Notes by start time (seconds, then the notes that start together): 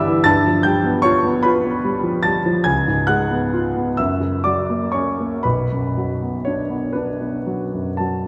Already playing: G1 G2 E3 G3 B3 E4 D5 E5 D6 E6
0.08 E3
0.24 G2 A5 A6
0.47 F3
0.63 G3 G5 G6
0.85 B3
1.02 F4 C#5 C#6
1.25 B3
1.43 F4 B4 B5
1.64 B3
1.85 G3
2.03 F3
2.23 G3 A5 A6
2.46 F3
2.64 C#2 G#5 G#6
2.88 G#2
3.07 G#3 F#5 F#6
3.31 B3
3.54 F4
3.77 B3
3.97 F#2 E5 E6
4.20 C#3
4.44 F#3 D5 D6
4.70 A#3
4.92 C#4 C#5 C#6
5.20 A#3
5.43 B1 B4 B5
5.72 F#2
5.97 F#3
6.22 B3
6.45 D4 C#5
6.70 B3
6.93 D4 B4
7.21 B3
7.47 F#3
7.74 F#2
7.97 F#3 A5